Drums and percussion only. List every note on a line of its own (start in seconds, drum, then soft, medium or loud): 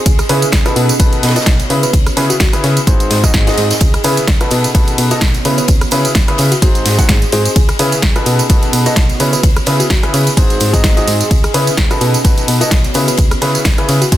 0.06 kick loud
0.06 closed hi-hat loud
0.06 ride medium
0.06 tambourine medium
0.19 cross-stick medium
0.19 closed hi-hat soft
0.19 tambourine soft
0.29 open hi-hat loud
0.29 ride medium
0.42 closed hi-hat soft
0.42 tambourine medium
0.52 kick loud
0.52 snare loud
0.52 closed hi-hat loud
0.52 ride medium
0.52 tambourine medium
0.66 cross-stick medium
0.66 closed hi-hat soft
0.66 tambourine soft
0.76 open hi-hat medium
0.76 ride medium
0.89 closed hi-hat soft
0.89 tambourine medium
1.00 kick loud
1.00 closed hi-hat medium
1.00 ride medium
1.00 tambourine medium
1.13 closed hi-hat soft
1.13 tambourine soft
1.23 snare medium
1.23 open hi-hat loud
1.23 ride medium
1.28 snare loud
1.28 ride medium
1.35 snare medium
1.35 closed hi-hat soft
1.35 ride medium
1.35 tambourine medium
1.41 snare medium
1.41 ride medium
1.46 kick loud
1.46 snare loud
1.46 closed hi-hat loud
1.46 ride loud
1.46 tambourine medium
1.60 closed hi-hat soft
1.60 tambourine soft
1.70 open hi-hat medium
1.70 ride medium
1.83 closed hi-hat soft
1.83 tambourine medium
1.93 kick loud
1.93 closed hi-hat loud
1.93 ride medium
1.93 tambourine medium
2.07 cross-stick medium
2.07 closed hi-hat soft
2.07 tambourine soft
2.17 snare medium
2.17 open hi-hat loud
2.17 ride medium
2.30 closed hi-hat soft
2.30 tambourine medium
2.40 kick loud
2.40 snare loud
2.40 closed hi-hat loud
2.40 ride medium
2.40 tambourine medium
2.53 cross-stick medium
2.53 closed hi-hat soft
2.53 ride soft
2.53 tambourine soft
2.64 snare medium
2.64 open hi-hat medium
2.64 ride medium
2.77 closed hi-hat soft
2.77 tambourine medium
2.87 kick loud
2.87 closed hi-hat loud
2.87 tambourine medium
3.00 closed hi-hat soft
3.00 tambourine soft
3.10 snare loud
3.10 open hi-hat loud
3.10 ride medium
3.24 kick medium
3.24 cross-stick medium
3.24 closed hi-hat soft
3.24 ride soft
3.24 tambourine medium
3.34 kick loud
3.34 snare loud
3.34 snare soft
3.34 closed hi-hat loud
3.34 tambourine medium
3.47 snare loud
3.47 closed hi-hat soft
3.47 ride medium
3.47 tambourine soft
3.57 snare medium
3.57 open hi-hat medium
3.57 ride medium
3.71 snare medium
3.71 closed hi-hat soft
3.71 ride medium
3.71 tambourine medium
3.80 kick loud
3.80 closed hi-hat loud
3.80 ride medium
3.80 tambourine soft
3.80 tambourine medium
3.94 cross-stick medium
3.94 closed hi-hat soft
3.94 tambourine soft
4.04 open hi-hat loud
4.04 ride medium
4.04 tambourine medium
4.17 closed hi-hat soft
4.17 tambourine medium
4.27 kick loud
4.27 snare loud
4.27 closed hi-hat loud
4.27 ride loud
4.27 ride medium
4.27 tambourine medium
4.41 cross-stick medium
4.41 closed hi-hat soft
4.41 tambourine soft
4.51 open hi-hat medium
4.51 ride medium
4.51 tambourine medium
4.64 closed hi-hat soft
4.64 tambourine medium
4.64 tambourine soft
4.75 kick loud
4.75 closed hi-hat loud
4.75 ride medium
4.75 tambourine medium
4.88 closed hi-hat soft
4.88 tambourine soft
4.98 open hi-hat loud
4.98 ride medium
4.98 tambourine loud
5.11 closed hi-hat soft
5.11 ride soft
5.11 tambourine medium
5.11 tambourine soft
5.21 kick loud
5.21 snare loud
5.21 closed hi-hat loud
5.21 ride medium
5.21 tambourine medium
5.21 tambourine soft
5.35 closed hi-hat soft
5.35 tambourine soft
5.45 open hi-hat medium
5.45 ride medium
5.45 tambourine loud
5.58 closed hi-hat soft
5.58 tambourine soft
5.58 tambourine medium
5.68 kick loud
5.68 closed hi-hat medium
5.68 ride medium
5.68 tambourine medium
5.81 cross-stick medium
5.81 closed hi-hat soft
5.81 tambourine soft
5.91 snare medium
5.91 open hi-hat loud
5.91 ride medium
5.91 tambourine medium
6.05 closed hi-hat soft
6.05 tambourine medium
6.05 tambourine soft
6.15 kick loud
6.15 snare loud
6.15 closed hi-hat medium
6.15 ride medium
6.15 ride loud
6.15 tambourine medium
6.28 cross-stick medium
6.28 closed hi-hat soft
6.28 ride soft
6.28 tambourine soft
6.38 snare soft
6.38 open hi-hat loud
6.38 ride medium
6.38 tambourine loud
6.51 closed hi-hat soft
6.51 tambourine soft
6.51 tambourine medium
6.62 kick loud
6.62 closed hi-hat medium
6.62 ride medium
6.62 tambourine medium
6.75 closed hi-hat soft
6.75 tambourine soft
6.85 snare loud
6.85 open hi-hat loud
6.85 ride medium
6.85 tambourine medium
6.99 kick medium
6.99 closed hi-hat soft
6.99 tambourine medium
6.99 tambourine soft
7.08 kick loud
7.08 snare loud
7.08 closed hi-hat loud
7.08 ride medium
7.08 tambourine medium
7.22 closed hi-hat soft
7.22 tambourine soft
7.32 open hi-hat medium
7.32 ride medium
7.32 tambourine loud
7.45 closed hi-hat soft
7.45 tambourine medium
7.45 tambourine soft
7.56 kick loud
7.56 closed hi-hat medium
7.56 ride medium
7.56 tambourine medium
7.69 cross-stick medium
7.69 closed hi-hat soft
7.69 tambourine soft
7.79 open hi-hat loud
7.79 ride medium
7.79 tambourine loud
7.92 closed hi-hat soft
7.92 tambourine medium
7.92 tambourine soft
8.02 kick loud
8.02 snare loud
8.02 closed hi-hat medium
8.02 ride medium
8.02 tambourine medium
8.16 cross-stick medium
8.16 closed hi-hat soft
8.16 tambourine soft
8.26 open hi-hat loud
8.26 ride medium
8.26 tambourine medium
8.39 closed hi-hat soft
8.39 tambourine medium
8.39 tambourine soft
8.49 kick loud
8.49 closed hi-hat medium
8.49 ride medium
8.49 tambourine medium
8.63 closed hi-hat soft
8.63 tambourine soft
8.73 open hi-hat loud
8.73 ride medium
8.73 tambourine loud
8.86 closed hi-hat soft
8.86 ride soft
8.86 tambourine soft
8.86 tambourine medium
8.96 kick loud
8.96 snare loud
8.96 closed hi-hat medium
8.96 ride medium
8.96 tambourine medium
9.10 closed hi-hat soft
9.10 tambourine soft
9.20 open hi-hat medium
9.20 ride medium
9.20 tambourine loud
9.32 closed hi-hat soft
9.32 tambourine soft
9.32 tambourine medium
9.43 kick loud
9.43 closed hi-hat medium
9.43 ride medium
9.43 ride loud
9.43 tambourine medium
9.56 cross-stick medium
9.56 closed hi-hat soft
9.56 tambourine soft
9.66 snare medium
9.66 open hi-hat loud
9.66 ride medium
9.66 tambourine loud
9.80 closed hi-hat soft
9.80 tambourine soft
9.80 tambourine medium
9.90 kick loud
9.90 snare loud
9.90 closed hi-hat medium
9.90 ride medium
10.03 cross-stick medium
10.03 closed hi-hat soft
10.03 ride soft
10.03 tambourine soft
10.13 snare soft
10.13 open hi-hat loud
10.13 ride medium
10.13 tambourine loud
10.27 closed hi-hat soft
10.27 tambourine medium
10.37 kick loud
10.37 closed hi-hat medium
10.37 ride medium
10.37 tambourine medium
10.50 closed hi-hat soft
10.50 tambourine soft
10.60 open hi-hat loud
10.60 ride medium
10.60 tambourine loud
10.73 kick medium
10.73 closed hi-hat soft
10.73 tambourine soft
10.73 tambourine medium
10.84 kick loud
10.84 snare loud
10.84 closed hi-hat medium
10.84 ride medium
10.84 tambourine medium
10.97 closed hi-hat soft
10.97 tambourine soft
11.08 open hi-hat loud
11.08 ride medium
11.08 tambourine medium
11.21 closed hi-hat soft
11.21 tambourine medium
11.21 tambourine soft
11.31 kick loud
11.31 closed hi-hat medium
11.31 ride medium
11.31 tambourine medium
11.44 cross-stick medium
11.44 closed hi-hat soft
11.44 tambourine soft
11.54 open hi-hat loud
11.54 ride medium
11.54 tambourine loud
11.67 closed hi-hat soft
11.67 tambourine soft
11.67 tambourine medium
11.77 kick loud
11.77 snare loud
11.77 closed hi-hat medium
11.77 ride medium
11.91 cross-stick medium
11.91 closed hi-hat soft
11.91 tambourine soft
12.01 open hi-hat medium
12.01 ride medium
12.01 tambourine loud
12.13 closed hi-hat soft
12.13 tambourine soft
12.13 tambourine medium
12.25 kick loud
12.25 closed hi-hat medium
12.25 ride medium
12.25 tambourine medium
12.38 closed hi-hat soft
12.38 tambourine soft
12.48 open hi-hat loud
12.48 ride medium
12.48 tambourine medium
12.61 closed hi-hat soft
12.61 ride soft
12.61 tambourine soft
12.61 tambourine medium
12.71 kick loud
12.71 snare loud
12.71 closed hi-hat medium
12.71 ride loud
12.71 ride medium
12.71 tambourine medium
12.84 closed hi-hat soft
12.84 tambourine soft
12.94 open hi-hat medium
12.94 ride medium
12.94 tambourine loud
13.08 closed hi-hat soft
13.08 tambourine soft
13.08 tambourine medium
13.17 kick loud
13.17 closed hi-hat medium
13.17 ride medium
13.17 tambourine medium
13.31 cross-stick medium
13.31 closed hi-hat soft
13.31 tambourine soft
13.41 snare medium
13.41 open hi-hat loud
13.41 ride medium
13.41 tambourine medium
13.55 closed hi-hat soft
13.55 tambourine medium
13.55 tambourine soft
13.65 kick loud
13.65 snare loud
13.65 closed hi-hat loud
13.65 ride medium
13.65 tambourine medium
13.78 cross-stick medium
13.78 closed hi-hat soft
13.78 ride soft
13.78 tambourine soft
13.88 snare soft
13.88 open hi-hat medium
13.88 ride medium
13.88 tambourine medium
14.02 closed hi-hat soft
14.02 tambourine medium
14.02 tambourine soft
14.12 kick loud
14.12 closed hi-hat medium
14.12 ride medium
14.12 ride loud
14.12 tambourine medium
14.12 tambourine soft